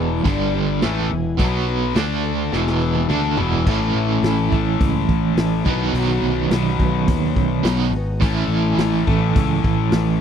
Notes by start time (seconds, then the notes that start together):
Already playing: E1 E2 B2 E3 E4 G#4
0.00 E3 B3
0.24 G1 G2 D3 G3 D4 G4 D5, kick, open hi-hat
0.52 D4 G4 D5
0.82 A1 E2 A2 E3 G#3 A3 B3 E4 G#4, snare, open hi-hat
1.10 E1 E2 B2
1.37 B1 B2 F#3 B3 F#4, kick, open hi-hat
1.66 F#3 B3 F#4
1.95 D2 D3 A3 D4 A4, snare, open hi-hat
2.23 A3 D4 A4
2.52 E1 E2 B2 E3 G#3 B3 G#4, snare
2.67 snare
2.79 E3 G#3 B3 G#4
2.95 high tom
3.09 D2 E2 B2 D3 E3 G#3 A3 B3 D4 G#4, mid tom
3.37 E1 E2 B2 E3, floor tom
3.52 floor tom
3.65 A1 A2 E3 A3 C#4 E4 A4, kick, crash
3.95 A1
4.23 A1 E3 A3 C#4 A4, snare, open hi-hat
4.51 A1 A2 E3 A3 C#4 A4, kick
4.81 C#2, kick, open hi-hat
5.09 A1, kick
5.35 A1 E3 A3, snare, open hi-hat
5.40 C#4 A4
5.65 B1 B2 D#3 F#3 B3 D#4 F#4, kick
5.94 B1 B2 F#3 B3 D#4 F#4, open hi-hat
6.22 B1
6.50 B1 B2 F#3 B3 D#4, snare, open hi-hat
6.54 F#4
6.79 B1 D#4 F#4, kick
6.83 B3
7.08 D#2, kick, open hi-hat
7.36 B1, kick
7.63 B1 B2 D#3 F#3 B3 D#4, snare, open hi-hat
7.69 F#4
7.91 G#1 F#4
7.95 B3 D#4
8.20 A1 A2 E3 A3 C#4 E4, kick, open hi-hat
8.24 A4
8.48 A1
8.78 A1 C#4 A4, snare, open hi-hat
9.06 A1 A2 E3 A3 C#4 A4, kick
9.35 C#2, kick, open hi-hat
9.64 A1, kick
9.92 A1 E3 A3 C#4 A4, snare, open hi-hat